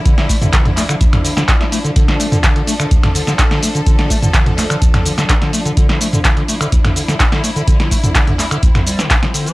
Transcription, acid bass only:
X:1
M:4/4
L:1/16
Q:1/4=126
K:Dm
V:1 name="Acid bass" clef=bass
D, D, A, D, D, D, A, D, D,, D, D, D, D A, A, D, | D, D, A, D, D, D, A, D, D,, D, D, D, D D, A, D, | D, D, A, D, D, D, A, D, D,, D, D, D, D D, A, D, | D, D, A, D, D, D, A, D, D,, D, D, D, D D, A, D, |
D, D, A, D, D, D, A, D, D,, D, G, D, D D, D, F, |]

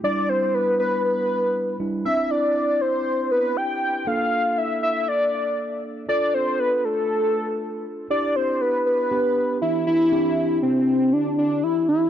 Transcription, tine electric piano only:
X:1
M:4/4
L:1/8
Q:1/4=119
K:C
V:1 name="Tine electric piano"
[G,DE]6- [G,DE] [G,DE] | [CDE]8 | [_B,DA]8 | [DFA]8 |
[DEG]4 [B,DG]4 | [CDEG]8 |]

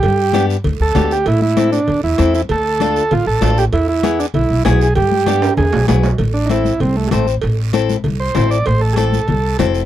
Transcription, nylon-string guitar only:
X:1
M:4/4
L:1/8
Q:1/4=195
K:Ephr
V:1 name="Nylon-string guitar"
z2 [B,DG] z3 [B,DG] z | z2 [CEA] z3 [CEA] z | z2 [DFA] z3 [DFA] z | z2 [B,E^G] z3 [B,EG] z |
z2 [B,DG] z3 [B,E^G] z | [K:Am] z2 [CEA] z3 [CEc] z | z2 [CEA] z3 [CEA] z | z2 [CEA] z3 [CEA] z |]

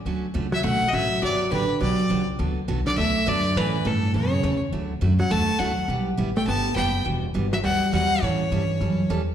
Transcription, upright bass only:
X:1
M:4/4
L:1/8
Q:"Swing" 1/4=206
K:D
V:1 name="Upright bass" clef=bass
D,,2 C,,2 B,,, z A,,,2 | G,,,2 A,,,2 B,,,2 C,,2 | D,,2 B,,,2 D,,2 F,,2 | A,,2 G,,2 F,,2 E,,2 |
D,,2 F,,2 E,, z D,, z | B,,,2 A,,,2 G,,,2 F,,,2 | E,,,2 G,,,2 D,,2 E,,2 | A,,2 G,,2 F,,2 E,,2 |]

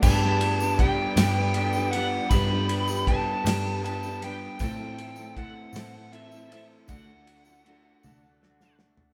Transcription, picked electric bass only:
X:1
M:6/8
L:1/8
Q:3/8=52
K:G
V:1 name="Picked electric bass" clef=bass
G,,3 G,,3 | G,,3 G,,3 | A,,3 A,,3 | D,,3 D,,3 |]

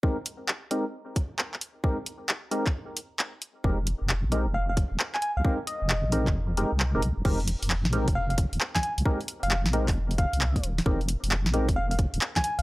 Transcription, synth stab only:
X:1
M:4/4
L:1/16
Q:"Swing 16ths" 1/4=133
K:Fm
V:1 name="Synth stab"
[A,CEGB] z4 z [A,CEGB] z8 z | [A,CEGB] z4 z [A,CEGB] z8 z | [A,CEGB] z4 z [A,CEGB] z8 z | [A,CEGB] z4 z [A,CEGB] z3 [A,CEGB] z2 [A,CEGB] z2 |
[A,CEGB] z4 z [A,CEGB] z8 z | [A,CEGB] z4 z [A,CEGB] z8 z | [A,CEGB] z4 z [A,CEGB] z8 z |]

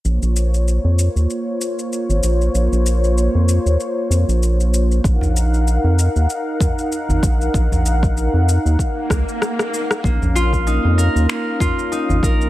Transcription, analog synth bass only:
X:1
M:4/4
L:1/16
Q:"Swing 16ths" 1/4=96
K:Bbm
V:1 name="Analog synth bass" clef=bass
B,,, B,,,4 F,,2 E,, z4 z A,,, B,,,2 | B,,, B,,,4 F,,2 E,, z2 F,, B,,,4- B,,, | B,,, B,,,4 F,,2 E,, z4 z A,,, B,,,2 | B,,, B,,,4 F,,2 E,, z2 D,, z4 z |
B,,, B,,,4 F,,2 E,, z4 z A,,, B,,,2 |]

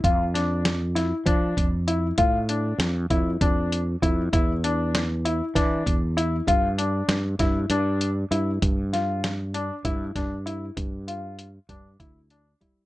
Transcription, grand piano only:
X:1
M:7/8
L:1/8
Q:1/4=98
K:Flyd
V:1 name="Grand piano"
F D2 E D2 E | F D2 E D2 E | E D2 E D2 E | F D2 E D2 E |
z F2 D E D E | z F2 D E D E |]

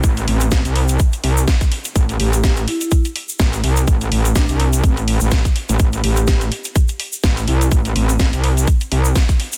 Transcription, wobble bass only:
X:1
M:4/4
L:1/16
Q:"Swing 16ths" 1/4=125
K:Am
V:1 name="Wobble bass" clef=bass
A,,,2 A,,,2 A,,, C,,3 z2 C,,2 z4 | A,,,2 A,,,4 z6 A,,,2 C,,2 | A,,,2 A,,,2 A,,, C,,3 A,,,3 A,,,2 z2 A,,, | A,,,2 A,,,4 z6 A,,,2 C,,2 |
A,,,2 A,,,2 A,,, C,,3 z2 C,,2 z4 |]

